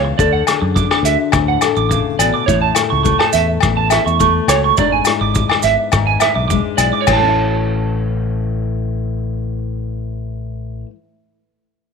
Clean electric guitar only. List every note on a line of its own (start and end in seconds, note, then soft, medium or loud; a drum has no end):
0.05 muted clean electric guitar stroke medium
0.18 0.30 D5 medium
0.33 0.43 F#5 medium
0.62 muted clean electric guitar stroke medium
0.76 0.87 D6 medium
0.91 1.01 D6 medium
1.05 1.16 E5 medium
1.48 1.59 F#5 medium
1.77 1.87 D6 medium
1.90 2.02 D6 medium
2.19 2.31 D5 medium
2.34 2.44 D6 loud
2.46 2.58 C#5 medium
2.62 2.72 A5 medium
2.90 3.01 C#6 medium
3.03 3.16 C#6 medium
3.19 3.30 A5 medium
3.33 3.45 E5 medium
3.77 3.88 A5 medium
3.91 4.03 E5 medium
4.06 4.17 C#6 medium
4.20 4.32 C#6 medium
4.49 4.60 C#5 medium
4.64 4.75 C#6 loud
4.77 4.89 D5 medium
4.92 5.03 G#5 medium
5.21 5.31 D6 medium
5.34 5.46 D6 medium
5.49 5.60 D6 medium
5.63 5.75 E5 medium
6.07 6.17 G#5 medium
6.20 6.32 E5 medium
6.35 6.46 D6 medium
6.48 6.60 D6 medium
6.77 6.89 D5 medium
6.93 7.04 D6 medium
7.01 10.80 C#5 medium
7.07 muted clean electric guitar stroke medium
7.12 10.86 A5 medium